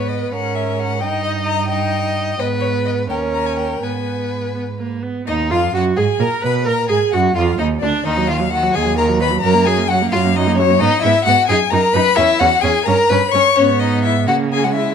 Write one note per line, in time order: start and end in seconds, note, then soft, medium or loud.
0.00 0.28 G#2 soft
0.00 0.34 B3 soft
0.00 0.34 B4 medium
0.08 0.32 D#5 medium
0.32 1.03 G#2 medium
0.32 1.01 C#4 soft
0.32 1.01 A#4 medium
0.32 0.57 F#5 medium
0.55 0.81 E5 medium
0.80 1.02 F#5 medium
1.00 2.39 G2 medium
1.00 1.69 D#4 medium
1.00 1.69 D#5 medium
1.00 1.23 G5 medium
1.24 1.32 D#5 medium
1.46 1.68 A#5 medium
1.69 2.38 D#4 medium
1.69 2.42 D#5 medium
1.69 2.37 G5 medium
2.39 3.11 G#2 medium
2.39 3.06 B3 medium
2.39 3.10 B4 medium
2.39 2.47 D#5 medium
2.60 2.68 C#5 medium
2.85 2.93 D#5 medium
3.09 3.82 D#2 medium
3.09 3.81 C#4 medium
3.09 3.85 A#4 medium
3.09 3.18 G5 medium
3.34 3.48 A#5 medium
3.46 3.58 G#5 medium
3.59 3.85 G5 medium
3.82 5.05 G#2 soft
3.82 4.50 B3 soft
3.82 4.92 B4 soft
3.82 4.56 G#5 medium
4.54 4.62 B3 medium
4.79 5.04 A#3 soft
5.03 5.26 B3 medium
5.27 5.52 D#2 medium
5.27 5.49 D#4 medium
5.27 5.53 D#4 medium
5.27 5.35 D#5 medium
5.51 5.74 F2 medium
5.51 5.59 F4 medium
5.51 5.74 F4 medium
5.51 5.74 F5 medium
5.74 5.97 F#2 medium
5.74 5.99 F#4 medium
5.74 5.82 F#4 medium
5.74 5.84 F#5 medium
5.97 6.05 G#2 medium
5.97 6.05 G#4 medium
5.97 6.22 G#4 medium
5.97 6.24 G#5 medium
6.20 6.28 A#2 medium
6.20 6.44 A#4 medium
6.20 6.29 A#4 medium
6.20 6.45 A#5 medium
6.42 6.68 B2 medium
6.42 6.65 B4 medium
6.42 6.67 B4 medium
6.42 6.53 B5 medium
6.65 6.89 A#2 medium
6.65 6.88 A#4 medium
6.65 6.74 A#4 medium
6.65 6.89 A#5 medium
6.89 6.98 G#2 medium
6.89 6.97 G#4 medium
6.89 7.15 G#4 medium
6.89 7.11 G#5 medium
7.12 7.35 F#2 medium
7.12 7.34 F#4 medium
7.12 7.36 F#4 medium
7.12 7.20 F#5 medium
7.35 7.58 F2 medium
7.35 7.43 F4 medium
7.35 7.59 F4 medium
7.35 7.58 F5 medium
7.58 7.82 D#2 medium
7.58 7.66 D#4 medium
7.58 7.68 D#4 medium
7.58 7.67 D#5 medium
7.80 7.90 D2 medium
7.80 7.90 D4 medium
7.80 8.05 D4 medium
7.80 8.07 D5 medium
8.05 8.67 D#2 medium
8.05 8.19 D#3 medium
8.05 8.28 D#4 medium
8.05 8.29 D#5 medium
8.17 8.31 F#3 medium
8.27 8.41 D#3 medium
8.27 8.37 F4 medium
8.27 8.52 F5 medium
8.40 8.52 F#3 soft
8.51 8.65 D#3 medium
8.51 8.76 F#4 medium
8.51 8.73 F#5 loud
8.63 8.77 F#3 medium
8.74 9.35 D#2 medium
8.74 8.87 D#3 medium
8.74 8.97 G#4 medium
8.74 8.97 G#5 medium
8.86 8.96 F#3 medium
8.97 9.10 D#3 medium
8.97 9.20 A#4 medium
8.97 9.06 A#5 medium
9.09 9.22 F#3 medium
9.20 9.33 D#3 medium
9.20 9.29 B4 medium
9.20 9.41 B5 loud
9.31 9.43 F#3 medium
9.42 10.04 F#2 medium
9.42 9.56 F#3 medium
9.42 9.68 A#4 loud
9.42 9.67 A#5 loud
9.55 9.68 A#3 medium
9.65 9.80 F#3 medium
9.65 9.89 G#4 medium
9.65 9.91 G#5 loud
9.78 9.90 A#3 medium
9.89 10.04 F#3 medium
9.89 9.98 F#4 medium
9.89 10.11 F#5 loud
10.02 10.16 A#3 medium
10.12 10.73 F#2 medium
10.12 10.27 F#3 medium
10.12 10.20 F4 medium
10.12 10.38 F5 medium
10.25 10.35 A#3 medium
10.35 10.49 F#3 medium
10.35 10.58 D#4 medium
10.35 10.57 D#5 loud
10.47 10.61 A#3 medium
10.56 10.72 F#3 medium
10.56 10.80 C#4 medium
10.56 10.82 C#5 loud
10.70 10.81 A#3 medium
10.80 10.88 G#2 medium
10.80 10.89 B3 medium
10.80 11.02 D#4 loud
10.80 11.05 D#5 loud
11.03 11.12 G#2 medium
11.03 11.13 B3 medium
11.03 11.25 E4 medium
11.03 11.24 E5 loud
11.25 11.34 G#2 medium
11.25 11.36 B3 medium
11.25 11.48 F#4 medium
11.25 11.47 F#5 loud
11.48 11.57 F#2 medium
11.48 11.58 D#4 medium
11.48 11.56 G#4 loud
11.48 11.72 G#5 loud
11.71 11.80 F#2 medium
11.71 11.81 D#4 medium
11.71 11.95 A#4 medium
11.71 11.95 A#5 loud
11.93 12.02 F#2 medium
11.93 12.03 D#4 medium
11.93 12.18 B4 loud
11.93 12.18 B5 loud
12.16 12.26 E2 medium
12.16 12.27 C#4 medium
12.16 12.41 E4 loud
12.16 12.40 E5 loud
12.39 12.49 E2 medium
12.39 12.48 C#4 medium
12.39 12.62 F#4 medium
12.39 12.63 F#5 loud
12.62 12.72 E2 medium
12.62 12.72 C#4 medium
12.62 12.85 G#4 medium
12.62 12.87 G#5 loud
12.85 12.95 G2 medium
12.85 12.95 C#4 medium
12.85 13.11 A#4 loud
12.85 13.11 A#5 loud
13.09 13.18 G2 medium
13.09 13.19 C#4 medium
13.09 13.31 B4 medium
13.09 13.33 B5 loud
13.31 13.41 G2 medium
13.31 13.43 C#4 medium
13.31 13.56 C#5 medium
13.31 13.57 C#6 loud
13.56 14.28 G#2 medium
13.56 14.29 B3 medium
13.56 13.65 C#4 loud
13.56 13.81 C#5 loud
13.80 14.04 D#4 medium
13.80 14.03 D#5 medium
14.04 14.12 E4 medium
14.04 14.27 E5 medium
14.27 14.95 C#3 medium
14.27 14.65 A#3 medium
14.27 14.36 F#4 medium
14.27 14.35 F#5 medium
14.53 14.65 G#4 medium
14.53 14.66 G#5 medium
14.64 14.95 G#3 medium
14.64 14.75 F#4 medium
14.64 14.74 F#5 medium
14.74 14.95 E4 medium
14.74 14.95 E5 medium